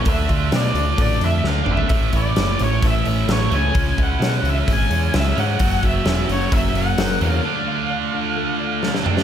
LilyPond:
<<
  \new Staff \with { instrumentName = "Lead electric guitar" } { \time 4/4 \key d \lydian \tempo 4 = 130 e''4 d''4 d''8 e''8 f''8 e''8~ | e''8 d''4 cis''8 e''4 cis''8 gis''8~ | gis''8 fis''4 e''8 gis''4 e''8 fis''8~ | fis''8 e''4 cis''8 e''8 fis''4 f''8~ |
f''2.~ f''8 r8 | }
  \new Staff \with { instrumentName = "Clean electric guitar" } { \time 4/4 \key d \lydian d8 f'8 d'8 d8 a8 d'8 a8 d'8 | a,8 e'8 cis'8 e8 a8 cis'8 a8 cis'8 | cis8 e'8 cis'8 e8 gis8 cis'8 gis8 cis'8 | fis8 fis'8 cis'8 fis8 ais8 cis'8 ais8 cis'8 |
d8 f'8 d'8 d8 a8 d'8 a8 d'8 | }
  \new Staff \with { instrumentName = "Distorted electric guitar" } { \clef bass \time 4/4 \key d \lydian <d a d'>2.~ <d a d'>8 <d a d'>8 | <a, e a>2.~ <a, e a>8 <a, e a>8 | <cis gis cis'>2.~ <cis gis cis'>8 <cis gis cis'>8 | <fis, cis fis>2.~ <fis, cis fis>8 <fis, cis fis>8 |
<d a d'>2.~ <d a d'>8 <d a d'>8 | }
  \new Staff \with { instrumentName = "Picked electric bass" } { \clef bass \time 4/4 \key d \lydian d,8 d,8 b,8 d,8 a,,8 f,8 d,8 gis,,8 | a,,8 a,,8 fis,,8 a,,8 a,,8 a,,8 a,,8 cis,8 | cis,8 cis,8 b,8 cis,8 gis,,8 e,8 cis,8 gis,8 | fis,,8 fis,,8 e,,8 fis,,8 fis,,8 fis,,8 fis,,8 e,8 |
r1 | }
  \new DrumStaff \with { instrumentName = "Drums" } \drummode { \time 4/4 <hho bd>8 <hho bd>8 <hho sn>8 hho8 <hho bd>8 hho8 sn8 toml16 tomfh16 | <hho bd>8 <hho bd>8 <hho sn>8 hho8 <hho bd>8 hho8 <hho sn>8 hho8 | <hho bd>8 <hho bd>8 <hho sn>8 hho8 <hho bd>8 hho8 <hho sn>8 hho8 | <hho bd>8 <hho bd>8 <hho sn>8 hho8 <hho bd>8 hho8 <hho sn>8 hho8 |
r4 r4 r4 sn16 sn16 toml16 sn16 | }
>>